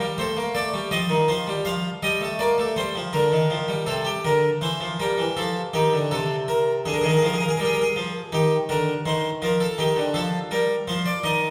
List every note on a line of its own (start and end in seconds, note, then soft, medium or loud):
0.00 0.17 G3 medium
0.18 0.36 A3 medium
0.18 0.41 C5 medium
0.37 0.54 A#3 medium
0.55 0.72 A3 medium
0.55 0.78 D5 medium
0.74 0.91 G3 medium
0.91 1.09 F3 medium
0.91 1.14 D#5 medium
1.09 1.28 D#3 medium
1.28 1.46 F3 medium
1.28 1.51 C5 medium
1.47 1.65 G3 medium
1.65 1.88 F3 medium
1.65 1.88 F5 medium
2.03 2.21 G3 medium
2.03 2.26 D#5 medium
2.21 2.39 A3 medium
2.39 2.58 A#3 medium
2.39 2.62 D5 medium
2.58 2.76 A3 medium
2.76 2.95 G3 medium
2.76 3.00 C5 medium
2.95 3.13 F3 medium
3.13 3.32 D3 medium
3.13 3.86 A#4 medium
3.32 3.50 D#3 medium
3.50 3.69 F3 medium
3.68 3.87 G3 medium
3.86 4.10 C3 medium
3.86 4.05 A4 medium
4.05 4.24 G4 medium
4.25 4.48 D3 soft
4.25 4.48 A#4 medium
4.61 4.80 E3 soft
4.61 4.85 C5 medium
4.80 4.99 F3 soft
5.00 5.18 G3 medium
5.00 5.23 A#4 medium
5.18 5.36 E3 medium
5.37 5.60 F3 soft
5.37 5.60 A4 medium
5.74 5.92 D#3 medium
5.74 5.97 G4 medium
5.93 6.11 D3 medium
6.11 6.83 C3 medium
6.11 6.34 A4 medium
6.48 6.71 A#4 medium
6.86 7.03 D3 medium
6.86 6.93 G#4 soft
6.94 7.01 A#4 soft
7.01 7.22 D#3 medium
7.01 7.09 G#4 soft
7.09 7.17 A#4 soft
7.17 7.25 G#4 soft
7.23 7.45 F3 medium
7.23 7.34 A#4 soft
7.33 7.41 G#4 soft
7.41 7.49 A#4 soft
7.49 7.57 G#4 medium
7.57 7.82 G3 medium
7.57 7.65 A#4 soft
7.65 7.73 G#4 soft
7.73 7.81 A#4 soft
7.81 8.31 G#4 medium
7.96 8.19 F3 medium
8.32 8.55 D#3 medium
8.32 8.55 G4 soft
8.69 8.92 D3 medium
8.69 8.92 A#4 medium
9.06 9.28 D#3 medium
9.06 9.28 C5 medium
9.42 9.65 F3 medium
9.42 9.60 A#4 medium
9.60 9.78 A4 medium
9.78 9.96 D#3 medium
9.78 10.01 G4 medium
9.96 10.14 D3 medium
10.14 10.37 F3 medium
10.14 10.37 A4 medium
10.51 10.74 G3 medium
10.51 10.74 A#4 medium
10.88 11.10 F3 medium
10.88 11.06 C5 medium
11.06 11.24 D5 medium
11.24 11.47 D#3 medium
11.24 11.50 D#5 medium